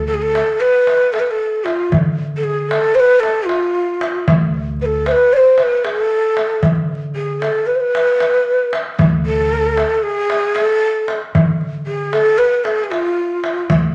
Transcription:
Already playing: upright bass D2
0.07 ney A4, darbuka ka
0.14 ney G#4
0.22 ney A4
0.35 darbuka tek
0.60 ney B4
0.87 darbuka tek
1.13 ney A4, darbuka tek
1.19 ney B4
1.26 ney B4
1.31 ney A4
1.64 ney F4, darbuka tek
1.92 upright bass D3, darbuka dum
2.18 darbuka ka
2.37 ney A4
2.44 ney G#4, darbuka ka
2.69 ney A4, darbuka tek
2.95 ney C5
3.00 ney B4
3.20 ney A4, darbuka tek
3.46 ney F4, darbuka tek
4.01 darbuka tek
4.28 upright bass D2, darbuka dum
4.54 darbuka ka
4.80 ney B4, darbuka ka
4.86 ney A4
5.06 ney C5, darbuka tek
5.12 ney B4
5.33 ney C5 D5
5.58 ney C5, darbuka tek
5.63 ney B4
5.84 ney G#4, darbuka tek
5.97 ney A4
6.37 darbuka tek
6.63 upright bass D3, darbuka dum
6.89 darbuka ka
7.16 ney G#4, darbuka ka
7.41 ney A4, darbuka tek
7.67 ney B4, darbuka ka
7.75 ney C5
7.80 ney B4
7.95 darbuka tek
8.20 darbuka tek
8.73 darbuka tek
8.99 upright bass D2, darbuka dum
9.25 ney A4, darbuka ka
9.51 darbuka ka
9.77 darbuka tek
10.03 ney G#4
10.30 darbuka tek
10.55 ney A4, darbuka tek
11.08 darbuka tek
11.35 upright bass D3, darbuka dum
11.61 darbuka ka
11.87 ney G#4, darbuka ka
12.13 ney A4, darbuka tek
12.38 ney B4
12.64 ney A4, darbuka tek
12.83 ney G#4
12.91 ney F4, darbuka tek
13.44 darbuka tek
13.70 upright bass D2, darbuka dum

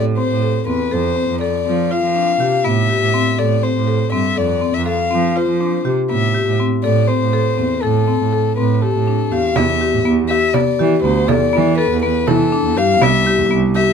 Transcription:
Already playing: cello A2
0.18 marimba C4, violin C5
0.30 cello A2
0.42 marimba A4
0.67 cello E2, marimba C4, violin B4
0.91 cello F2, marimba A4, violin C5
1.16 marimba C4
1.29 cello F2
1.41 marimba A4, violin D5
1.65 cello F3, marimba C4
1.91 marimba F4, violin F5
2.03 cello F3
2.15 marimba D4
2.40 cello C3, marimba G4
2.64 cello A2, marimba B3, violin E5
2.89 marimba G4
3.02 cello A2
3.14 marimba C4
3.39 cello A2, marimba A4, violin D5
3.63 marimba C4, violin C5
3.76 cello A2
3.87 marimba A4
4.12 cello G2, marimba C4, violin E5
4.36 cello F2, marimba A4, violin D5
4.61 marimba C4
4.74 cello F2, violin E5
4.86 marimba A4, violin F5
5.11 cello F3, marimba C4
5.36 marimba F4, violin C5
5.49 cello F3
5.61 marimba D4
5.85 cello C3, marimba G4
6.10 cello A2, marimba B3, violin E5
6.34 marimba G4
6.47 cello A2
6.60 marimba C4
6.84 cello A2, marimba A4, violin D5
7.07 marimba C4, violin C5
7.21 cello A2
7.33 marimba A4
7.58 cello E2, marimba C4
7.82 cello A2, violin A4, marimba A4
8.08 marimba C4
8.21 cello A2
8.33 marimba A4
8.57 cello A2, marimba C4, violin B4
8.74 violin B4
8.81 marimba G4, violin A4
8.95 cello A2
9.07 marimba D4
9.32 cello E2, marimba G4, violin F5
9.56 cello E2, marimba B3, violin E5, frame drum
9.81 marimba G4
9.93 cello A2
10.05 cello E2, marimba B3
10.29 marimba G4, violin E5
10.54 marimba B3, violin D5, frame drum
10.79 cello E3, marimba G4
11.02 cello D2, marimba B3, violin C5
11.28 cello E2, marimba A4, violin D5, frame drum
11.53 cello E3, marimba B3
11.78 marimba A4, violin B4
11.91 cello E2
12.03 marimba B3, violin B4
12.27 cello E3, marimba E4, violin A4, frame drum
12.52 marimba D4, frame drum
12.65 cello E2
12.77 cello G2, marimba G4, violin F5
13.01 cello C2, marimba B3, violin E5, frame drum
13.27 marimba G4
13.38 cello E2
13.51 cello C2, marimba B3
13.76 marimba G4, violin E5

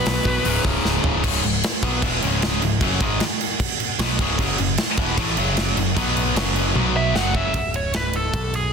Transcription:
Already playing: distorted electric guitar B2 F#3 B3, lead electric guitar B4
0.06 picked electric bass B1, snare, open hi-hat
0.25 picked electric bass B1, kick
0.44 picked electric bass C#1, distorted electric guitar C#2 G#2 C#3, open hi-hat
0.65 picked electric bass C#1, kick
0.85 picked electric bass C#1, snare
1.04 picked electric bass C#1, floor tom
1.23 picked electric bass C#1, distorted electric guitar C#2 G#2 C#3, kick, crash
1.43 picked electric bass C#1, distorted electric guitar C#2 G#2, crash
1.64 snare, crash
1.83 picked electric bass B1, distorted electric guitar B2 F#3 B3, kick, crash
2.02 picked electric bass E1, distorted electric guitar E2 B2 E3, kick, crash
2.22 picked electric bass C#1, distorted electric guitar C#2 G#2 C#3, crash
2.42 snare, crash
2.61 picked electric bass C#1, distorted electric guitar C#2 G#2, crash
2.81 picked electric bass F#1, distorted electric guitar F#2 C#3 F#3, kick, crash
3.00 picked electric bass G#1, distorted electric guitar G#2 D#3 G#3, kick, crash
3.20 snare, crash
3.41 crash
3.60 kick, crash
3.80 crash
3.99 picked electric bass B1, distorted electric guitar B2 F#3 B3, snare, crash
4.19 picked electric bass C#1, distorted electric guitar C#2 G#2 C#3, kick, crash
4.39 picked electric bass F#1, distorted electric guitar F#2 C#3 F#3, kick, crash
4.58 picked electric bass F#1, distorted electric guitar F#2 C#3, crash
4.78 snare, crash
4.97 picked electric bass E1, distorted electric guitar E2 B2 E3, kick, crash
5.17 picked electric bass A1, distorted electric guitar A2 E3 A3, kick, crash
5.37 picked electric bass F#1, distorted electric guitar F#2 C#3 F#3, crash
5.57 snare, crash
5.77 picked electric bass F#1, distorted electric guitar F#2 C#3, crash
5.96 picked electric bass B1, distorted electric guitar B2 F#3 B3, kick, crash
6.17 crash
6.36 picked electric bass F#1, distorted electric guitar F#2 C#3 F#3, snare, crash
6.56 crash
6.75 picked electric bass B1, distorted electric guitar B2 F#3 B3, high tom
6.96 lead electric guitar E5
7.14 picked electric bass F#1, distorted electric guitar F#2 C#3 F#3, lead electric guitar F#5, snare
7.35 lead electric guitar E5, kick
7.54 picked electric bass C#1, kick, ride
7.74 lead electric guitar C#5, ride
7.94 lead electric guitar B4, snare, ride
8.13 lead electric guitar A4, ride
8.34 picked electric bass B1, kick, ride
8.54 lead electric guitar G#4, ride

